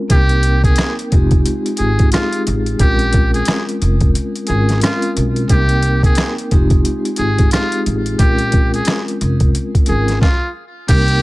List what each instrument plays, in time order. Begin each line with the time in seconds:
Already playing: vibraphone G#3 C4 C#4 F4 A#4
0.08 upright bass C2, vibraphone A#3 C4 D#4 A#4 G5, muted trumpet G4, kick, closed hi-hat
0.29 closed hi-hat
0.43 closed hi-hat
0.64 muted trumpet G#4, kick, closed hi-hat
0.76 cross-stick, snare, closed hi-hat
0.99 closed hi-hat
1.12 upright bass F1, vibraphone G#3 C4 D#4 F4 G4, kick, closed hi-hat
1.31 kick, closed hi-hat
1.46 closed hi-hat
1.66 closed hi-hat
1.77 upright bass G#1, vibraphone G#3 C4 D#4 F4 G4, muted trumpet G#4, closed hi-hat
1.99 kick, closed hi-hat
2.11 vibraphone G#3 C4 D#4 F4 G#4, muted trumpet F4, cross-stick, snare, closed hi-hat
2.33 closed hi-hat
2.47 upright bass A1, closed hi-hat
2.66 closed hi-hat
2.79 upright bass A#1, vibraphone G#3 C4 C#4 F4 A#4, muted trumpet G4, kick, closed hi-hat
2.99 closed hi-hat
3.13 kick, closed hi-hat
3.34 muted trumpet G#4, closed hi-hat
3.45 cross-stick, snare, closed hi-hat
3.69 closed hi-hat
3.82 upright bass F1, closed hi-hat
4.01 kick, closed hi-hat
4.15 closed hi-hat
4.35 closed hi-hat
4.47 upright bass G#1, vibraphone G#3 C4 C#4 F4 A#4, muted trumpet G#4, closed hi-hat
4.69 snare, closed hi-hat
4.81 vibraphone G#3 C4 C#4 F4 A#4, muted trumpet F4, cross-stick, snare, closed hi-hat
5.02 closed hi-hat
5.17 upright bass B1, closed hi-hat
5.36 closed hi-hat
5.48 upright bass C2, vibraphone A#3 C4 D#4 A#4 G5, muted trumpet G4, kick, closed hi-hat
5.69 closed hi-hat
5.83 closed hi-hat
6.03 muted trumpet G#4, kick, closed hi-hat
6.15 cross-stick, snare, closed hi-hat
6.38 closed hi-hat
6.51 upright bass F1, vibraphone G#3 C4 D#4 F4 G4, kick, closed hi-hat
6.70 kick, closed hi-hat
6.85 closed hi-hat
7.05 closed hi-hat
7.16 upright bass G#1, vibraphone G#3 C4 D#4 F4 G4, muted trumpet G#4, closed hi-hat
7.38 kick, closed hi-hat
7.50 vibraphone G#3 C4 D#4 F4 G#4, muted trumpet F4, cross-stick, snare, closed hi-hat
7.72 closed hi-hat
7.86 upright bass A1, closed hi-hat
8.06 closed hi-hat
8.18 upright bass A#1, vibraphone G#3 C4 C#4 F4 A#4, muted trumpet G4, kick, closed hi-hat
8.38 closed hi-hat
8.52 kick, closed hi-hat
8.74 muted trumpet G#4, closed hi-hat
8.85 cross-stick, snare, closed hi-hat
9.08 closed hi-hat
9.21 upright bass F1, closed hi-hat
9.40 kick, closed hi-hat
9.55 closed hi-hat
9.75 kick, closed hi-hat
9.86 upright bass G#1, vibraphone G#3 C4 C#4 F4 A#4, muted trumpet G#4, closed hi-hat
10.08 snare, closed hi-hat
10.21 muted trumpet F4, kick, snare
10.87 upright bass C2, vibraphone A#3 C4 D#4 A#4 G5, muted trumpet G4, kick, closed hi-hat, crash
11.08 closed hi-hat